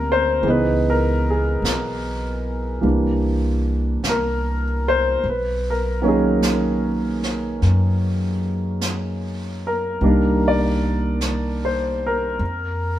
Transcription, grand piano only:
Already playing: G3 A#3 C4 D4 D#4 A#4
0.12 C5
0.42 E3 G#3 B3
0.47 D#4 B4
0.90 A#4
1.30 G#4
2.81 E3 G3 A#3 D4
4.09 A#4
4.88 C5
5.29 B4
5.70 A#4
6.02 D#3 F#3 A#3 C#4
6.08 G#4
9.67 A#4
10.01 D#3 G3 A#3 D4
10.48 D5
11.65 C5
12.06 A#4

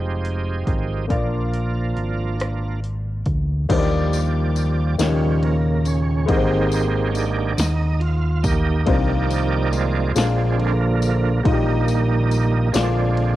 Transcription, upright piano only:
Already playing: G#3 D#4 F4 C5
1.08 A#2 A#3 D4 F4 D5
3.69 D#3 A#3 D4 D#4 G4 C5
3.78 D5
4.98 D#3 A#3 C#4 D#4 G4 C#5
6.26 G#2 G#3 C4 D#4 G4 A#4
6.37 C5
8.86 C3 A#3 D4 D#4 F4 C5
10.15 A#2 G#3 A#3 D4 F4 A#4
11.44 A#2 A#3 D#4 F4
11.53 G4
12.73 A#2 A#3 D4 F4 G#4 D5

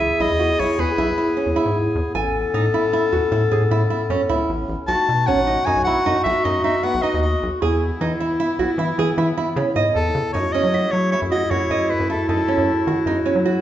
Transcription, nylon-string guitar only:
0.00 E4
0.20 E4
0.40 F#4
0.59 E4
0.79 G#4
0.98 E4
1.18 E4
1.37 C#4
1.56 E4
2.15 G#5
2.54 D#4
2.74 E4
2.93 E4
3.12 F#4
3.32 E4
3.51 G#4
3.71 E4
3.90 E4
4.10 C#4
4.29 E4
4.88 F#4
5.28 C#4
5.47 D#4
5.66 D#4
5.87 E4
6.06 D#4
6.26 F#4
6.45 D#4
6.64 D#4
6.83 B3
7.03 D#4
7.62 G#4
8.01 D#4
8.20 E4
8.40 E4
8.59 F#4
8.79 E4
8.99 G#4
9.18 E4
9.37 E4
9.57 C#4
9.76 D#5
10.34 D#4
10.54 C#4
10.74 F#4
11.13 E4
11.32 F#4
11.51 F#4
11.71 D#5
12.10 E4
12.29 D#4
12.48 C#4
12.87 F#4
13.07 D#4
13.26 C#4
13.45 F#4

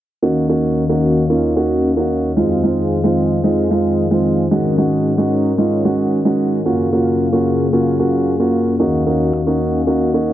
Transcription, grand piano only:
0.23 A#3 C#4 D#4 F#4
0.49 A#3 C#4 D#4 F#4
0.89 A#3 C#4 D#4 F#4
1.30 A#3 C#4 D#4 F4
1.56 A#3 C#4 D#4 F#4
1.97 A#3 C#4 D#4 F#4
2.37 G#3 C4 D#4 F4
2.64 G#3 C4 D#4 F4
3.04 G#3 C4 D#4 F4
3.44 G#3 C4 D#4 F4
3.71 G#3 C4 D#4 F4
4.11 G#3 C4 D#4 F4
4.51 G#3 C#4 D#4 F#4
4.78 G#3 C#4 D#4 F#4
5.18 G#3 C#4 D#4 F#4
5.58 G#3 C#4 D#4 F4
5.85 G#3 C#4 D#4 F#4
6.25 G#3 C#4 D#4 F#4
6.66 A#3 C#4 F4 F#4
6.93 A#3 C#4 F4 F#4
7.33 A#3 C#4 F4 F#4
7.73 A#3 C#4 F4 F#4
7.99 A#3 C#4 F4 F#4
8.40 A#3 C#4 F4 F#4
8.80 A#3 C#4 D#4 F#4
9.06 A#3 C#4 D#4 F#4
9.47 A#3 C#4 D#4 F#4
9.87 A#3 C#4 D#4 F#4
10.14 A#3 C#4 D#4 F#4

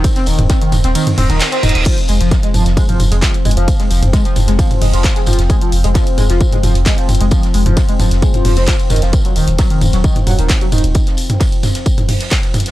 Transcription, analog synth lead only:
0.16 C4
0.27 D#3
0.50 C4
0.61 D#3
0.84 C4
0.95 D#3
1.18 C4
1.30 D#3
1.52 C4
1.63 D#3
1.86 F3
2.09 G#3
2.21 F3
2.43 G#3
2.54 F3
2.77 G#3
2.89 F3
3.12 G#3
3.22 F3
3.45 G#3
3.57 F3
3.80 G#3
3.90 F3
4.13 G#3
4.25 F3
4.48 G#3
4.59 F3
4.81 G#3
4.93 F3
5.16 G#3
5.27 F3
5.50 G#3
5.61 F3
5.84 G#3
5.95 F3
6.18 G#3
6.30 F3
6.52 G#3
6.63 F3
6.86 G#3
6.98 F3
7.21 G#3
7.31 F3
7.54 G#3
7.66 F3
7.89 G#3
8.00 F3
8.22 G#3
8.34 F3
8.45 F3
8.57 C4
8.68 F3
8.91 D#3
9.02 F3
9.25 F#3
9.36 D#3
9.59 F#3
9.71 D#3
9.93 F#3
10.04 D#3
10.27 F#3
10.39 D#3
10.62 F#3
10.72 D#3

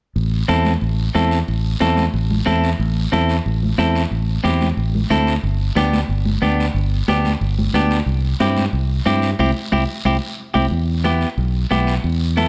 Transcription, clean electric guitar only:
0.48 C4 E4 A4
1.15 C4 E4 A4
1.80 C4 E4 A4
2.46 C4 E4 A4
3.12 C4 E4 A4
3.78 C4 E4 A4
4.44 C4 E4 G4
5.10 C4 E4 A4
5.76 B3 D4 G4
6.42 B3 D4 G4
7.08 B3 D4 G4
7.74 B3 D4 G4
8.40 C4 E4 G4
9.06 C4 E4 G4
9.39 C4 E4 G4
9.72 C4 E4 G4
10.05 C4 E4 G4
10.54 C4 E4 G4
11.04 B3 E4 G4
11.71 B3 E4 G4
12.37 B3 E4 A4

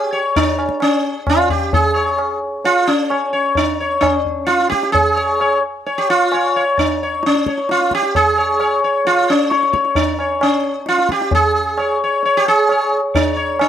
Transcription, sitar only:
Already playing: G4
0.13 C#5
0.36 D4
0.82 C#4
1.29 F4
1.50 G4
1.74 G#4
1.96 C#5
2.65 F4
2.87 C#4
3.11 C#5
3.33 C#5
3.57 D4
3.80 C#5
4.01 D4
4.13 C#4
4.47 F4
4.70 G4
4.92 G#4
5.16 C#5
5.41 C#5
5.86 C#5
5.98 G4
6.10 F4
6.34 C#5
6.56 C#5
6.79 D4
7.03 C#5
7.26 C#4
7.47 C#5
7.71 F4
7.95 G4
8.16 G#4
8.38 C#5
8.60 C#5
8.84 C#5
9.07 F4
9.30 C#4
9.52 C#5
9.73 C#5
9.96 D4
10.20 C#5
10.43 C#4
10.89 F4
11.12 G4
11.35 G#4
11.79 C#5
12.04 C#5
12.25 C#5
12.37 G4
12.48 G#4
12.71 C#5
13.15 D4
13.36 C#5
13.61 D4

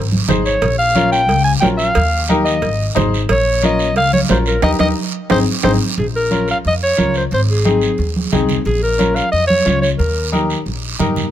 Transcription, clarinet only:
Already playing: C5
0.45 C#5
0.78 F5
1.12 G5
1.44 G#5
1.60 G5
1.77 F5
2.45 D#5
3.31 C#5
3.65 D#5
3.97 F5
4.13 C#5
4.31 C5
4.48 A#4
4.64 D#5
4.80 D#5
5.32 C5
5.64 C5
5.99 G#4
6.16 A#4
6.51 F5
6.67 D#5
6.83 C#5
7.17 C5
7.34 C5
7.51 G#4
8.66 G#4
8.83 A#4
9.15 F5
9.32 D#5
9.47 C#5
9.82 C#5
9.98 A#4

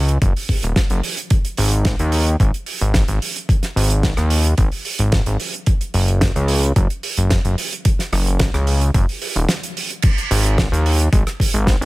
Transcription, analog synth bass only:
Already playing: C#2
0.22 F#1
0.63 D#1
0.91 F#1
1.58 G#1
2.00 D#2
2.40 G#1
2.81 G#1
3.08 G#1
3.76 G#1
4.17 D#2
4.58 G#1
4.99 G#1
5.27 G#1
5.94 F#1
6.36 C#2
6.76 F#1
7.18 F#1
7.45 F#1
8.13 F#1
8.54 C#2
8.94 F#1
9.36 D#1
10.31 G#1
10.72 D#2
11.13 G#1
11.54 G#1
11.81 G#1

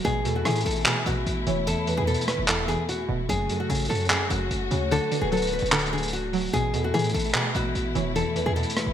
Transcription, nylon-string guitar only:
0.05 G#4
0.36 F#4
0.45 G#4
0.66 A4
0.87 G#4
1.07 F#4
1.67 A4
1.97 G#4
2.07 A4
2.28 B4
2.48 A4
2.68 G#4
2.89 F#4
3.29 G#4
3.60 F#4
3.70 G#4
3.89 A4
4.10 G#4
4.30 F#4
4.92 A4
5.21 G#4
5.33 A4
5.53 B4
5.72 A4
5.93 G#4
6.13 F#4
6.53 G#4
6.84 F#4
6.94 G#4
7.14 A4
7.35 G#4
7.56 F#4
8.16 A4
8.46 G#4
8.56 A4
8.76 B4

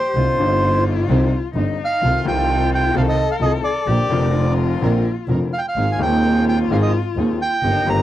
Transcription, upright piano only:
0.16 C2 C3 D3 G3 C4 D#4
0.38 G1 G2 G3 C4 D4
0.42 D#4
1.09 C2 C3 D3 G3 C4 D#4
1.55 G1 G2 D3 G3 C4 D#4
2.02 C2 C3 D#3 A3 C4 F4
2.23 C2 C3 D#3 A3 C4 F4
2.93 C2 C3 D#3 A3 C4 F4
3.39 C2 C3 D#3 A3 C4 F4
3.87 A#1 A#2 D3 A#3 C4 F4
4.08 F1 F2 D3 A#3 C4
4.13 F4
4.81 A#1 A#2 D3 A#3 C4 F4
5.28 F1 F2 D3 A#3 C4 F4
5.76 G#1 G#2 D#3 G#3 C4 G#4
5.98 D#1 D#2 D#3 G#3 C4
6.02 G#4
6.70 G#1 G#2 D#3 G#3 C4 G#4
7.17 D#1 D#2 D#3 G#3 C4 G#4
7.63 G1 G2 D#3 A#3 C4 G4
7.84 G1 G2 D#3 A#3 C4
7.89 G4

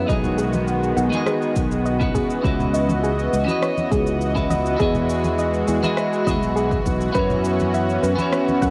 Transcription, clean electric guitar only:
0.07 B3 D#4 F#4
0.11 G#4 D#5
1.10 B3 D#4 F#4
1.15 G#4 D#5
1.99 C#4 E4 F#4 B4 F#5
2.42 C#4 E4 F#4
2.47 B4 D#5
3.45 C#4 E4 F#4
3.50 B4 D#5
4.35 C#4 E4 F#4 B4 F#5
4.77 B3 E4 F#4
4.82 G#4 D#5
5.83 B3 E4 F#4 G#4 D#5
6.25 B3 E4 F#4
6.29 G#4 D#5
7.12 B3 C#4 E4
7.17 F#4 C#5
8.16 B3 C#4 E4
8.20 F#4 C#5

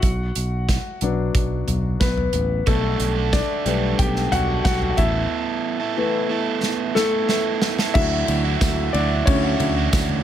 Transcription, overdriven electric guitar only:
2.66 B2 G3 A3 D4 A4
3.15 A3 D4 A4
3.65 G3 A3 D4 A4
4.31 G3 A3 D4 A4
4.64 G3 A3 D4 A4
4.97 A3 B3 E4 A4
5.80 B3 E4 A4
6.29 A3 B3 E4 A4
6.95 A3 B3 E4 A4
7.28 A3 B3 E4 A4
7.78 B3 E4 A4
7.95 D3 E3 A3 E4 F#4
8.44 D3 E3 A3 E4 F#4
8.94 E3 A3 E4 F#4
9.43 A3 E4 F#4
9.76 D3 E3 A3 E4 F#4

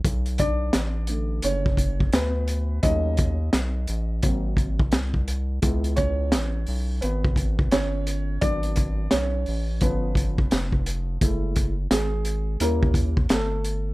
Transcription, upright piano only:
0.39 D4 D5
1.09 D3 A3
1.44 C#4 C#5
2.14 B3 B4
2.83 F#3 A3 C#4 D#4 D#5
4.23 F#3 A#3 C4
5.62 G#3 B3 E4
5.96 C#4 C#5
7.01 B3 B4
7.72 C#4 C#5
8.41 F#3 B3 D4 D5
9.11 C#4 C#5
9.82 F3 B3 C#4 B4
11.21 G#3 A3 E4
11.91 G#3 G#4
12.60 G3 A#3 C#4 E4 A#4
13.30 A3 A4

